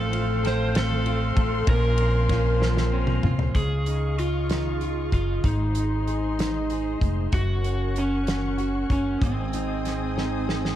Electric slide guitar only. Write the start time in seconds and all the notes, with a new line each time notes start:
Already playing: A4
0.47 C5
0.78 A4
1.69 A#4
3.56 G#4
4.19 F4
5.14 F4
5.45 D#4
7.34 F#4
7.98 C#4
8.92 C#4
9.24 C4